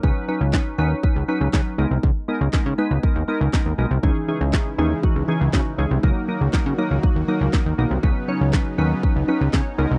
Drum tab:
CP |--x---x-|--x---x-|--x---x-|--x---x-|
SD |--o---o-|--o---o-|--o---o-|--o---o-|
BD |o-o-o-o-|o-o-o-o-|o-o-o-o-|o-o-o-o-|

CP |--x---x-|
SD |--o---o-|
BD |o-o-o-o-|